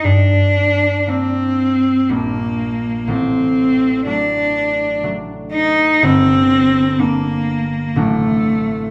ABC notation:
X:1
M:3/4
L:1/8
Q:1/4=60
K:Gm
V:1 name="Cello"
D2 C2 B,2 | C2 D2 z E | C2 B,2 A,2 |]
V:2 name="Harp"
[G,,B,DG]2 [B,D]2 [B,,,G,D]2 | A,,,2 [^F,A,D]2 [F,A,D]2 | G,,,2 [G,B,D]2 [A,,,^F,CD]2 |]